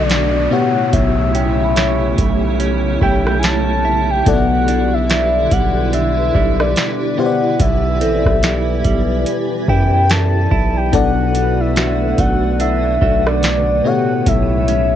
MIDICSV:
0, 0, Header, 1, 9, 480
1, 0, Start_track
1, 0, Tempo, 833333
1, 536, Time_signature, 4, 2, 24, 8
1, 8615, End_track
2, 0, Start_track
2, 0, Title_t, "Soft synth lead"
2, 0, Program_c, 0, 80
2, 0, Note_on_c, 0, 74, 91
2, 301, Note_on_c, 0, 78, 98
2, 309, Note_off_c, 0, 74, 0
2, 535, Note_off_c, 0, 78, 0
2, 539, Note_on_c, 0, 76, 99
2, 1474, Note_off_c, 0, 76, 0
2, 1743, Note_on_c, 0, 79, 108
2, 1869, Note_off_c, 0, 79, 0
2, 1884, Note_on_c, 0, 79, 95
2, 1950, Note_on_c, 0, 80, 83
2, 1958, Note_off_c, 0, 79, 0
2, 1986, Note_on_c, 0, 81, 114
2, 1995, Note_off_c, 0, 80, 0
2, 2363, Note_on_c, 0, 79, 100
2, 2372, Note_off_c, 0, 81, 0
2, 2466, Note_on_c, 0, 78, 114
2, 2475, Note_off_c, 0, 79, 0
2, 2843, Note_on_c, 0, 76, 103
2, 2851, Note_off_c, 0, 78, 0
2, 3182, Note_on_c, 0, 78, 98
2, 3191, Note_off_c, 0, 76, 0
2, 3419, Note_off_c, 0, 78, 0
2, 3423, Note_on_c, 0, 76, 109
2, 3802, Note_on_c, 0, 74, 97
2, 3810, Note_off_c, 0, 76, 0
2, 4141, Note_on_c, 0, 78, 98
2, 4149, Note_off_c, 0, 74, 0
2, 4381, Note_on_c, 0, 76, 98
2, 4389, Note_off_c, 0, 78, 0
2, 5338, Note_off_c, 0, 76, 0
2, 5583, Note_on_c, 0, 79, 105
2, 5709, Note_off_c, 0, 79, 0
2, 5720, Note_on_c, 0, 79, 104
2, 5822, Note_on_c, 0, 81, 111
2, 5831, Note_off_c, 0, 79, 0
2, 6202, Note_on_c, 0, 79, 101
2, 6210, Note_off_c, 0, 81, 0
2, 6303, Note_on_c, 0, 78, 115
2, 6311, Note_off_c, 0, 79, 0
2, 6683, Note_on_c, 0, 76, 99
2, 6692, Note_off_c, 0, 78, 0
2, 7024, Note_on_c, 0, 78, 100
2, 7033, Note_off_c, 0, 76, 0
2, 7260, Note_off_c, 0, 78, 0
2, 7263, Note_on_c, 0, 76, 101
2, 7642, Note_on_c, 0, 74, 98
2, 7650, Note_off_c, 0, 76, 0
2, 7984, Note_on_c, 0, 78, 97
2, 7993, Note_off_c, 0, 74, 0
2, 8225, Note_on_c, 0, 76, 102
2, 8233, Note_off_c, 0, 78, 0
2, 8615, Note_off_c, 0, 76, 0
2, 8615, End_track
3, 0, Start_track
3, 0, Title_t, "Celesta"
3, 0, Program_c, 1, 8
3, 0, Note_on_c, 1, 85, 78
3, 359, Note_off_c, 1, 85, 0
3, 775, Note_on_c, 1, 79, 55
3, 943, Note_on_c, 1, 83, 53
3, 1073, Note_on_c, 1, 85, 56
3, 2040, Note_off_c, 1, 79, 0
3, 2169, Note_off_c, 1, 83, 0
3, 2309, Note_off_c, 1, 85, 0
3, 2696, Note_on_c, 1, 74, 62
3, 3961, Note_off_c, 1, 74, 0
3, 4137, Note_on_c, 1, 74, 60
3, 4302, Note_on_c, 1, 78, 58
3, 4615, Note_on_c, 1, 69, 81
3, 5401, Note_off_c, 1, 74, 0
3, 5529, Note_off_c, 1, 78, 0
3, 5575, Note_on_c, 1, 67, 50
3, 5880, Note_off_c, 1, 69, 0
3, 6294, Note_on_c, 1, 64, 64
3, 6512, Note_off_c, 1, 67, 0
3, 6773, Note_on_c, 1, 66, 78
3, 7559, Note_off_c, 1, 64, 0
3, 7976, Note_on_c, 1, 69, 62
3, 8039, Note_off_c, 1, 66, 0
3, 8144, Note_on_c, 1, 73, 53
3, 8615, Note_off_c, 1, 69, 0
3, 8615, Note_off_c, 1, 73, 0
3, 8615, End_track
4, 0, Start_track
4, 0, Title_t, "FM electric piano"
4, 0, Program_c, 2, 5
4, 0, Control_c, 2, 64, 127
4, 0, Note_on_c, 2, 47, 67
4, 0, Note_on_c, 2, 59, 64
4, 0, Note_on_c, 2, 62, 62
4, 0, Note_on_c, 2, 69, 65
4, 0, Note_on_c, 2, 74, 78
4, 269, Note_off_c, 2, 47, 0
4, 271, Note_off_c, 2, 59, 0
4, 274, Note_off_c, 2, 62, 0
4, 276, Note_off_c, 2, 69, 0
4, 278, Note_off_c, 2, 74, 0
4, 288, Note_on_c, 2, 47, 67
4, 293, Note_on_c, 2, 59, 63
4, 297, Note_on_c, 2, 64, 64
4, 302, Control_c, 2, 64, 0
4, 302, Note_on_c, 2, 67, 60
4, 306, Note_on_c, 2, 73, 74
4, 395, Control_c, 2, 64, 127
4, 2189, Note_off_c, 2, 47, 0
4, 2191, Note_off_c, 2, 59, 0
4, 2194, Note_off_c, 2, 64, 0
4, 2196, Note_off_c, 2, 67, 0
4, 2198, Note_off_c, 2, 73, 0
4, 2449, Note_on_c, 2, 47, 75
4, 2453, Note_on_c, 2, 57, 51
4, 2458, Note_on_c, 2, 64, 64
4, 2462, Note_on_c, 2, 69, 64
4, 2463, Control_c, 2, 64, 0
4, 2467, Note_on_c, 2, 74, 75
4, 2491, Note_on_c, 2, 59, 65
4, 2498, Note_off_c, 2, 57, 0
4, 2574, Control_c, 2, 64, 127
4, 4109, Note_off_c, 2, 47, 0
4, 4114, Note_off_c, 2, 64, 0
4, 4116, Note_off_c, 2, 69, 0
4, 4118, Note_off_c, 2, 74, 0
4, 4124, Note_off_c, 2, 59, 0
4, 4131, Note_on_c, 2, 59, 62
4, 4136, Note_on_c, 2, 64, 64
4, 4140, Note_on_c, 2, 67, 63
4, 4143, Control_c, 2, 64, 0
4, 4145, Note_on_c, 2, 72, 61
4, 4182, Note_on_c, 2, 74, 73
4, 4184, Note_off_c, 2, 72, 0
4, 4241, Control_c, 2, 64, 127
4, 6030, Note_off_c, 2, 59, 0
4, 6033, Note_off_c, 2, 64, 0
4, 6035, Note_off_c, 2, 67, 0
4, 6056, Note_off_c, 2, 74, 0
4, 6290, Note_on_c, 2, 47, 70
4, 6294, Note_on_c, 2, 59, 62
4, 6298, Note_on_c, 2, 62, 63
4, 6302, Note_on_c, 2, 69, 63
4, 6303, Control_c, 2, 64, 0
4, 6307, Note_on_c, 2, 74, 75
4, 6389, Control_c, 2, 64, 127
4, 7950, Note_off_c, 2, 47, 0
4, 7952, Note_off_c, 2, 59, 0
4, 7954, Note_off_c, 2, 62, 0
4, 7956, Note_off_c, 2, 69, 0
4, 7958, Note_off_c, 2, 74, 0
4, 7970, Note_on_c, 2, 47, 68
4, 7974, Note_on_c, 2, 59, 63
4, 7978, Note_on_c, 2, 64, 61
4, 7983, Control_c, 2, 64, 0
4, 7983, Note_on_c, 2, 67, 63
4, 7987, Note_on_c, 2, 73, 72
4, 8084, Control_c, 2, 64, 127
4, 8615, Note_off_c, 2, 47, 0
4, 8615, Note_off_c, 2, 59, 0
4, 8615, Note_off_c, 2, 64, 0
4, 8615, Note_off_c, 2, 67, 0
4, 8615, Note_off_c, 2, 73, 0
4, 8615, End_track
5, 0, Start_track
5, 0, Title_t, "Clean electric guitar"
5, 0, Program_c, 3, 27
5, 0, Note_on_c, 3, 47, 83
5, 0, Note_on_c, 3, 57, 64
5, 0, Note_on_c, 3, 62, 62
5, 0, Note_on_c, 3, 66, 71
5, 293, Note_off_c, 3, 47, 0
5, 296, Note_on_c, 3, 45, 81
5, 353, Note_off_c, 3, 62, 0
5, 355, Note_off_c, 3, 66, 0
5, 529, Note_off_c, 3, 45, 0
5, 536, Note_on_c, 3, 45, 85
5, 775, Note_on_c, 3, 61, 62
5, 1012, Note_off_c, 3, 61, 0
5, 1013, Note_off_c, 3, 57, 0
5, 1015, Note_on_c, 3, 57, 65
5, 1019, Note_on_c, 3, 61, 66
5, 1023, Note_on_c, 3, 64, 71
5, 1249, Note_off_c, 3, 57, 0
5, 1256, Note_on_c, 3, 57, 66
5, 1489, Note_off_c, 3, 61, 0
5, 1496, Note_on_c, 3, 61, 66
5, 1728, Note_off_c, 3, 57, 0
5, 1732, Note_off_c, 3, 61, 0
5, 1735, Note_on_c, 3, 57, 63
5, 1739, Note_on_c, 3, 61, 61
5, 1740, Note_off_c, 3, 64, 0
5, 1743, Note_on_c, 3, 64, 74
5, 2214, Note_off_c, 3, 64, 0
5, 2216, Note_on_c, 3, 64, 71
5, 2453, Note_off_c, 3, 45, 0
5, 2455, Note_on_c, 3, 47, 86
5, 2511, Note_off_c, 3, 57, 0
5, 2513, Note_off_c, 3, 61, 0
5, 2696, Note_on_c, 3, 62, 60
5, 2713, Note_off_c, 3, 64, 0
5, 2932, Note_off_c, 3, 62, 0
5, 2936, Note_on_c, 3, 55, 64
5, 2939, Note_on_c, 3, 62, 63
5, 2942, Note_on_c, 3, 64, 68
5, 3173, Note_off_c, 3, 55, 0
5, 3175, Note_on_c, 3, 55, 65
5, 3408, Note_off_c, 3, 62, 0
5, 3415, Note_on_c, 3, 62, 66
5, 3651, Note_off_c, 3, 62, 0
5, 3653, Note_off_c, 3, 55, 0
5, 3655, Note_on_c, 3, 55, 68
5, 3658, Note_on_c, 3, 62, 68
5, 3660, Note_off_c, 3, 64, 0
5, 3662, Note_on_c, 3, 64, 70
5, 4128, Note_off_c, 3, 47, 0
5, 4135, Note_on_c, 3, 47, 87
5, 4193, Note_off_c, 3, 62, 0
5, 4368, Note_off_c, 3, 47, 0
5, 4375, Note_on_c, 3, 47, 91
5, 4615, Note_on_c, 3, 60, 63
5, 4853, Note_off_c, 3, 55, 0
5, 4855, Note_on_c, 3, 55, 66
5, 4856, Note_off_c, 3, 60, 0
5, 4860, Note_off_c, 3, 64, 0
5, 4863, Note_on_c, 3, 64, 68
5, 5088, Note_off_c, 3, 55, 0
5, 5095, Note_on_c, 3, 55, 65
5, 5575, Note_off_c, 3, 55, 0
5, 5576, Note_off_c, 3, 64, 0
5, 5583, Note_on_c, 3, 64, 68
5, 6049, Note_off_c, 3, 64, 0
5, 6056, Note_on_c, 3, 64, 69
5, 6288, Note_off_c, 3, 47, 0
5, 6295, Note_on_c, 3, 47, 88
5, 6351, Note_off_c, 3, 64, 0
5, 6537, Note_on_c, 3, 62, 62
5, 6772, Note_off_c, 3, 62, 0
5, 6776, Note_on_c, 3, 57, 62
5, 6779, Note_on_c, 3, 62, 67
5, 6782, Note_on_c, 3, 66, 68
5, 7014, Note_off_c, 3, 57, 0
5, 7017, Note_on_c, 3, 57, 62
5, 7250, Note_off_c, 3, 62, 0
5, 7257, Note_on_c, 3, 62, 69
5, 7492, Note_off_c, 3, 62, 0
5, 7494, Note_off_c, 3, 57, 0
5, 7496, Note_off_c, 3, 66, 0
5, 7496, Note_on_c, 3, 57, 64
5, 7499, Note_on_c, 3, 62, 67
5, 7503, Note_on_c, 3, 66, 72
5, 7974, Note_off_c, 3, 47, 0
5, 7977, Note_on_c, 3, 45, 84
5, 8033, Note_off_c, 3, 62, 0
5, 8035, Note_off_c, 3, 66, 0
5, 8210, Note_off_c, 3, 45, 0
5, 8217, Note_on_c, 3, 45, 92
5, 8456, Note_on_c, 3, 61, 63
5, 8615, Note_off_c, 3, 45, 0
5, 8615, Note_off_c, 3, 57, 0
5, 8615, Note_off_c, 3, 61, 0
5, 8615, End_track
6, 0, Start_track
6, 0, Title_t, "Ambient pad"
6, 0, Program_c, 4, 92
6, 0, Note_on_c, 4, 50, 73
6, 0, Note_on_c, 4, 57, 70
6, 0, Note_on_c, 4, 59, 68
6, 0, Note_on_c, 4, 66, 88
6, 279, Note_off_c, 4, 50, 0
6, 279, Note_off_c, 4, 59, 0
6, 279, Note_off_c, 4, 66, 0
6, 296, Note_on_c, 4, 49, 77
6, 296, Note_on_c, 4, 67, 69
6, 297, Note_on_c, 4, 64, 88
6, 2433, Note_off_c, 4, 57, 0
6, 2434, Note_off_c, 4, 49, 0
6, 2455, Note_on_c, 4, 50, 77
6, 2455, Note_on_c, 4, 71, 73
6, 4113, Note_off_c, 4, 64, 0
6, 4119, Note_off_c, 4, 50, 0
6, 4134, Note_on_c, 4, 52, 76
6, 4134, Note_on_c, 4, 64, 91
6, 6273, Note_off_c, 4, 52, 0
6, 6273, Note_off_c, 4, 64, 0
6, 6273, Note_off_c, 4, 67, 0
6, 6295, Note_on_c, 4, 50, 77
6, 6295, Note_on_c, 4, 57, 69
6, 6296, Note_on_c, 4, 78, 83
6, 7952, Note_off_c, 4, 71, 0
6, 7958, Note_off_c, 4, 50, 0
6, 7959, Note_off_c, 4, 78, 0
6, 7977, Note_on_c, 4, 55, 72
6, 7977, Note_on_c, 4, 64, 89
6, 7978, Note_on_c, 4, 49, 77
6, 8615, Note_off_c, 4, 49, 0
6, 8615, Note_off_c, 4, 55, 0
6, 8615, Note_off_c, 4, 57, 0
6, 8615, Note_off_c, 4, 64, 0
6, 8615, End_track
7, 0, Start_track
7, 0, Title_t, "808-style bass"
7, 0, Program_c, 5, 38
7, 0, Note_on_c, 5, 35, 106
7, 277, Note_off_c, 5, 35, 0
7, 536, Note_on_c, 5, 35, 108
7, 1233, Note_off_c, 5, 35, 0
7, 1257, Note_on_c, 5, 35, 104
7, 1717, Note_off_c, 5, 35, 0
7, 1736, Note_on_c, 5, 35, 111
7, 2433, Note_off_c, 5, 35, 0
7, 2456, Note_on_c, 5, 35, 115
7, 3153, Note_off_c, 5, 35, 0
7, 3176, Note_on_c, 5, 35, 100
7, 3637, Note_off_c, 5, 35, 0
7, 3656, Note_on_c, 5, 35, 105
7, 3886, Note_off_c, 5, 35, 0
7, 4376, Note_on_c, 5, 35, 105
7, 4617, Note_on_c, 5, 33, 95
7, 4626, Note_off_c, 5, 35, 0
7, 4749, Note_off_c, 5, 33, 0
7, 4756, Note_on_c, 5, 35, 98
7, 5082, Note_off_c, 5, 35, 0
7, 5096, Note_on_c, 5, 35, 102
7, 5326, Note_off_c, 5, 35, 0
7, 5577, Note_on_c, 5, 42, 108
7, 6037, Note_off_c, 5, 42, 0
7, 6057, Note_on_c, 5, 35, 105
7, 6287, Note_off_c, 5, 35, 0
7, 6297, Note_on_c, 5, 35, 110
7, 6993, Note_off_c, 5, 35, 0
7, 7017, Note_on_c, 5, 35, 102
7, 7477, Note_off_c, 5, 35, 0
7, 7497, Note_on_c, 5, 35, 107
7, 7957, Note_off_c, 5, 35, 0
7, 8217, Note_on_c, 5, 35, 114
7, 8615, Note_off_c, 5, 35, 0
7, 8615, End_track
8, 0, Start_track
8, 0, Title_t, "Downlifter"
8, 0, Program_c, 6, 103
8, 0, Note_on_c, 6, 60, 87
8, 2455, Note_off_c, 6, 60, 0
8, 8615, End_track
9, 0, Start_track
9, 0, Title_t, "Drums"
9, 55, Note_on_c, 9, 42, 61
9, 62, Note_on_c, 9, 38, 117
9, 113, Note_off_c, 9, 42, 0
9, 120, Note_off_c, 9, 38, 0
9, 535, Note_on_c, 9, 36, 100
9, 536, Note_on_c, 9, 42, 78
9, 593, Note_off_c, 9, 36, 0
9, 593, Note_off_c, 9, 42, 0
9, 776, Note_on_c, 9, 42, 61
9, 833, Note_off_c, 9, 42, 0
9, 1015, Note_on_c, 9, 42, 63
9, 1021, Note_on_c, 9, 38, 115
9, 1073, Note_off_c, 9, 42, 0
9, 1079, Note_off_c, 9, 38, 0
9, 1256, Note_on_c, 9, 36, 89
9, 1256, Note_on_c, 9, 42, 64
9, 1313, Note_off_c, 9, 36, 0
9, 1314, Note_off_c, 9, 42, 0
9, 1497, Note_on_c, 9, 42, 72
9, 1554, Note_off_c, 9, 42, 0
9, 1736, Note_on_c, 9, 36, 88
9, 1793, Note_off_c, 9, 36, 0
9, 1882, Note_on_c, 9, 37, 89
9, 1939, Note_off_c, 9, 37, 0
9, 1975, Note_on_c, 9, 42, 59
9, 1982, Note_on_c, 9, 38, 123
9, 2033, Note_off_c, 9, 42, 0
9, 2039, Note_off_c, 9, 38, 0
9, 2455, Note_on_c, 9, 42, 82
9, 2456, Note_on_c, 9, 36, 106
9, 2513, Note_off_c, 9, 36, 0
9, 2513, Note_off_c, 9, 42, 0
9, 2696, Note_on_c, 9, 42, 64
9, 2753, Note_off_c, 9, 42, 0
9, 2935, Note_on_c, 9, 42, 61
9, 2941, Note_on_c, 9, 38, 114
9, 2993, Note_off_c, 9, 42, 0
9, 2998, Note_off_c, 9, 38, 0
9, 3175, Note_on_c, 9, 36, 91
9, 3176, Note_on_c, 9, 42, 67
9, 3233, Note_off_c, 9, 36, 0
9, 3233, Note_off_c, 9, 42, 0
9, 3416, Note_on_c, 9, 42, 66
9, 3474, Note_off_c, 9, 42, 0
9, 3655, Note_on_c, 9, 36, 90
9, 3713, Note_off_c, 9, 36, 0
9, 3801, Note_on_c, 9, 37, 98
9, 3859, Note_off_c, 9, 37, 0
9, 3895, Note_on_c, 9, 42, 60
9, 3901, Note_on_c, 9, 38, 120
9, 3952, Note_off_c, 9, 42, 0
9, 3959, Note_off_c, 9, 38, 0
9, 4375, Note_on_c, 9, 36, 106
9, 4375, Note_on_c, 9, 42, 82
9, 4433, Note_off_c, 9, 36, 0
9, 4433, Note_off_c, 9, 42, 0
9, 4615, Note_on_c, 9, 42, 61
9, 4672, Note_off_c, 9, 42, 0
9, 4754, Note_on_c, 9, 36, 101
9, 4760, Note_on_c, 9, 37, 75
9, 4812, Note_off_c, 9, 36, 0
9, 4818, Note_off_c, 9, 37, 0
9, 4855, Note_on_c, 9, 42, 61
9, 4860, Note_on_c, 9, 38, 111
9, 4912, Note_off_c, 9, 42, 0
9, 4918, Note_off_c, 9, 38, 0
9, 5095, Note_on_c, 9, 36, 92
9, 5095, Note_on_c, 9, 42, 65
9, 5152, Note_off_c, 9, 42, 0
9, 5153, Note_off_c, 9, 36, 0
9, 5335, Note_on_c, 9, 42, 65
9, 5393, Note_off_c, 9, 42, 0
9, 5576, Note_on_c, 9, 36, 85
9, 5633, Note_off_c, 9, 36, 0
9, 5815, Note_on_c, 9, 42, 58
9, 5822, Note_on_c, 9, 38, 125
9, 5873, Note_off_c, 9, 42, 0
9, 5880, Note_off_c, 9, 38, 0
9, 6056, Note_on_c, 9, 36, 100
9, 6113, Note_off_c, 9, 36, 0
9, 6296, Note_on_c, 9, 36, 101
9, 6296, Note_on_c, 9, 42, 78
9, 6354, Note_off_c, 9, 36, 0
9, 6354, Note_off_c, 9, 42, 0
9, 6536, Note_on_c, 9, 42, 64
9, 6594, Note_off_c, 9, 42, 0
9, 6775, Note_on_c, 9, 42, 64
9, 6781, Note_on_c, 9, 38, 117
9, 6833, Note_off_c, 9, 42, 0
9, 6839, Note_off_c, 9, 38, 0
9, 7016, Note_on_c, 9, 36, 90
9, 7016, Note_on_c, 9, 42, 66
9, 7074, Note_off_c, 9, 36, 0
9, 7074, Note_off_c, 9, 42, 0
9, 7256, Note_on_c, 9, 42, 66
9, 7314, Note_off_c, 9, 42, 0
9, 7496, Note_on_c, 9, 36, 88
9, 7554, Note_off_c, 9, 36, 0
9, 7641, Note_on_c, 9, 37, 97
9, 7699, Note_off_c, 9, 37, 0
9, 7735, Note_on_c, 9, 42, 60
9, 7741, Note_on_c, 9, 38, 116
9, 7792, Note_off_c, 9, 42, 0
9, 7799, Note_off_c, 9, 38, 0
9, 8216, Note_on_c, 9, 36, 98
9, 8216, Note_on_c, 9, 42, 81
9, 8274, Note_off_c, 9, 36, 0
9, 8274, Note_off_c, 9, 42, 0
9, 8456, Note_on_c, 9, 42, 63
9, 8514, Note_off_c, 9, 42, 0
9, 8615, End_track
0, 0, End_of_file